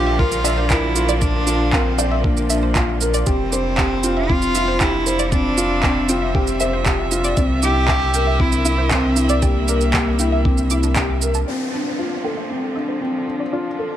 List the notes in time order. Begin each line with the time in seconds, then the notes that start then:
Already playing: A#1 D3 F3 A#3 D4 F4 G4
0.07 E5
0.19 F4 A#4, kick
0.32 D6, shaker
0.44 D5 E5, shaker
0.58 C5
0.70 E4 A#4, kick, clap, shaker
0.95 F4, shaker
1.09 D5, shaker
1.20 D4 D5, kick, shaker
1.47 F4 D6, shaker
1.73 C4 A#4 F5, kick, clap
1.98 D5 G5, shaker
2.11 E5
2.24 A#3 D4, kick
2.37 D6, shaker
2.50 D4 E5, shaker
2.63 C5
2.75 F4, kick, clap, shaker
3.01 A#4, shaker
3.14 D5, shaker
3.26 F1 C3 G3 C4 G4 D5, kick, shaker
3.52 C5 D6, shaker
3.78 G4 F5, kick, clap
4.03 F4 G5, shaker
4.17 E5
4.29 C4 F4 D6, kick
4.42 shaker
4.55 F4 E5, shaker
4.68 C5
4.80 E4 G4, kick, clap, shaker
5.06 C5, shaker
5.19 D5, shaker
5.32 C4 D4 D5 E5, kick, shaker
5.58 F4 D6, shaker
5.83 C4 F5, kick, clap
6.09 C4 F4 G5, shaker
6.22 E5
6.35 G4 D6, kick
6.47 shaker
6.60 C5 E5, shaker
6.73 C5
6.86 G4, kick, clap, shaker
7.11 F4, shaker
7.24 D5, shaker
7.37 C2 A#3 C4 D5, kick, shaker
7.63 E4 G4 D6, shaker
7.88 E5, kick, clap
8.14 A#4 G5, shaker
8.27 E5
8.40 C4 E4 D6, kick
8.52 shaker
8.65 E4 E5, shaker
8.78 C5
8.91 C4, kick, clap, shaker
9.16 E4, shaker
9.29 D5, shaker
9.42 A#3 G4 D5, kick, shaker
9.68 A#4 D6, shaker
9.81 shaker
9.93 G4 E5, kick, clap
10.19 E4 G5, shaker
10.32 E5
10.45 C4 D6, kick
10.58 shaker
10.70 E4 D6, shaker
10.83 D4, shaker
10.96 D4 G4, kick, clap, shaker
11.22 A#4, shaker
11.34 A5, shaker
11.47 D3 F3 C4 D5, downlifter
11.73 D4 D6
11.99 F4 F5
12.24 A4 G5
12.37 E5
12.50 C4 D6
12.75 D4 E5
12.89 C5
13.01 C4
13.27 D4
13.40 D5
13.53 D4 F4 D5
13.79 A4 D6